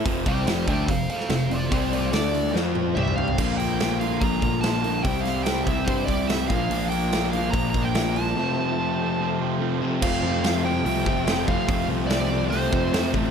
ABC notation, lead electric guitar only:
X:1
M:4/4
L:1/16
Q:1/4=144
K:F
V:1 name="Lead electric guitar"
z2 [dg]2 [dg]2 [dg]2 [Af]2 [Af]2 [Af]2 [Fd]2 | [Fd]2 [Fd]2 d4 z4 e2 f2- | f2 g4 f2 b2 b2 a4 | g2 f2 g2 e2 c2 d2 e2 f2- |
f2 g4 f2 b2 b g3 a2- | a12- a2 z2 | f6 g8 f2- | f2 z2 d4 c6 z2 |]